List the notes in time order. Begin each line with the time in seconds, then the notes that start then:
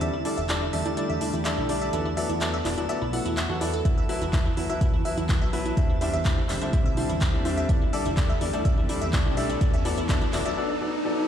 Already playing: D3 A5
0.01 E2 G3 A3 D4 G4 A4 D5 E5, closed hi-hat
0.14 E4
0.25 G3 D4 E4 A4 D5, open hi-hat
0.38 E1 E5, closed hi-hat
0.49 G3 D4 E4 A4 D5, clap, closed hi-hat
0.62 E4
0.73 E2 G3 D4 A4 D5 E5, open hi-hat
0.86 G3 D4 E4 A4 D5, closed hi-hat
0.97 G3 D4 E4 A4 D5, closed hi-hat
1.10 E2 E5
1.21 G3 D4 E4 A4 D5, open hi-hat
1.33 E2 E4, closed hi-hat
1.45 G3 D4 A4 D5 E5, clap, closed hi-hat
1.58 B1 E4
1.69 G3 D4 E4 A4 D5, open hi-hat
1.82 E5, closed hi-hat
1.93 E2 F#3 B3 E4 F#4 A4 D5, closed hi-hat
2.06 E4
2.17 F#3 B3 A4 D5 E5, open hi-hat
2.30 E2 E4, closed hi-hat
2.41 F#3 B3 E4 A4 D5, clap, closed hi-hat
2.54 E5
2.65 E1 F#3 B3 E4 A4 D5, clap, open hi-hat
2.77 F#3 B3 E4 A4 D5, closed hi-hat
2.89 F#3 B3 A4 D5 E5, closed hi-hat
3.02 B1 E4
3.13 F#3 B3 E4 A4 F#5, open hi-hat
3.26 E2 E4, closed hi-hat
3.37 E5, clap, closed hi-hat
3.49 E2 F#3 B3 F#4 A4 F#5
3.61 F#3 B3 E4 A4 D5, open hi-hat
3.74 A4, closed hi-hat
3.85 E2 E3 F#3 E4 B4 E5, kick, closed hi-hat, riser
3.98 E5
4.09 F#3 E4 B4 E5, open hi-hat
4.22 E1 E4, closed hi-hat
4.33 F#3 E4 B4 E5, kick, clap, closed hi-hat
4.46 E4
4.57 E2 F#3 E4 B4 E5, open hi-hat
4.70 F#3 E4 B4 E5, closed hi-hat
4.81 F#3 E4 B4 E5, kick, closed hi-hat
4.94 E2 E4
5.05 F#3 E4 B4 E5, open hi-hat
5.18 E2 E4, closed hi-hat
5.29 F#3 E4 B4 E5, kick, clap, closed hi-hat
5.42 B1 E5
5.53 F#3 E4 B4 E5, open hi-hat
5.66 E4, closed hi-hat
5.77 E2 D3 G3 C4 D4 E4 C5 E5, kick, closed hi-hat
5.90 E4
6.01 G3 D4 E4 C5 E5, open hi-hat
6.14 E2 E5, closed hi-hat
6.25 G3 D4 E4 C5 E5, kick, clap, closed hi-hat
6.38 E4
6.49 E1 G3 D4 C5 E5, clap, open hi-hat
6.62 G3 D4 E4 C5 E5, closed hi-hat
6.73 G3 D4 E4 C5 E5, kick, closed hi-hat
6.86 B1 E5
6.97 G3 D4 E4 C5 E5, open hi-hat
7.10 E2 E4, closed hi-hat
7.21 G3 D4 C5 E5, kick, clap, closed hi-hat
7.34 E2 E4
7.45 G3 D4 E4 C5 E5, open hi-hat
7.58 E5, closed hi-hat
7.69 E2 G3 A3 D4 E4 G4 D5, kick, closed hi-hat
7.82 E4
7.93 G3 D4 A4 D5 E5, open hi-hat
8.06 E1 E4, closed hi-hat
8.17 G3 D4 E4 A4 D5, kick, clap, closed hi-hat
8.29 E5
8.41 E2 G3 D4 E4 A4 D5, open hi-hat
8.54 G3 D4 E4 A4 D5, closed hi-hat
8.65 G3 D4 A4 D5 E5, kick, closed hi-hat
8.78 E2 E4
8.89 G3 D4 E4 A4 D5, open hi-hat
9.02 E2 E5, closed hi-hat
9.13 G3 D4 E4 A4 D5, kick, clap, closed hi-hat
9.26 B1 E4
9.37 G3 D4 A4 D5 E5, open hi-hat
9.50 E4, closed hi-hat
9.61 E2 F#3 B3 E4 F#4 A4 D5, kick, closed hi-hat
9.73 E5, closed hi-hat
9.85 F#3 B3 E4 A4 D5, open hi-hat
9.98 E2 E4, closed hi-hat
10.09 F#3 B3 A4 D5 E5, kick, clap, closed hi-hat
10.21 E4, closed hi-hat
10.33 E1 F#3 B3 E4 A4 D5, clap, open hi-hat
10.46 F#3 B3 A4 D5 E5, closed hi-hat
10.57 F#3 B3 A4 D5
10.81 F#3 B3 A4 D5
11.05 F#3 B3 A4 D5